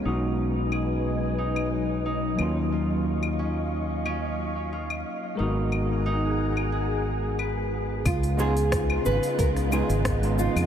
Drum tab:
HH |----------------|----------------|----------------|oo-oo--ooo-ooo-o|
SH |----------------|----------------|----------------|x-xxx-xxx-xxx-xx|
CL |----x----x----x-|---x----x----x--|--x----x----x---|x----x----x----x|
SD |----------------|----------------|----------------|----r----r--r---|
BD |----------------|----------------|----------------|o---o---o---o---|